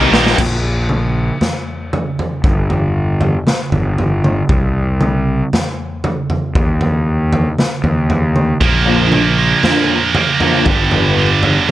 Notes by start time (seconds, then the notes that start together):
Already playing: C2 D#3 G3 A#3 D#4 G4
0.12 A#1 G3 A#3 D#4 G4, snare
0.27 snare
0.38 A#1, kick, floor tom, crash
0.89 mid tom
1.41 snare, floor tom
1.93 floor tom, mid tom
2.19 floor tom
2.44 G1, kick, floor tom
2.70 floor tom
3.21 floor tom
3.47 snare, mid tom
3.72 G1, floor tom
3.98 floor tom
4.24 mid tom
4.49 C2, kick, floor tom
5.01 mid tom
5.53 snare, floor tom
6.04 floor tom, mid tom
6.30 floor tom
6.55 D#2, kick, floor tom
6.81 floor tom
7.33 floor tom
7.58 snare, mid tom
7.84 D#2, floor tom
8.10 floor tom
8.36 mid tom
8.60 A#1 A#2 F3 A#3, kick, floor tom
8.85 D3 F3 A#3 D4
9.12 A#2 F3 A#3, mid tom
9.38 A#2 F3 A#3
9.63 A#2 D3 F3 A#3 D4, snare, floor tom
10.14 A#2 F3 A#3, floor tom, mid tom
10.40 A#2 D3 F3 A#3 D4, floor tom
10.66 G1 G2 D3 G3, kick, floor tom
10.91 D3 G3 B3 D4, floor tom
11.17 G2 D3 G3
11.43 G2 D3 G3, floor tom
11.68 D3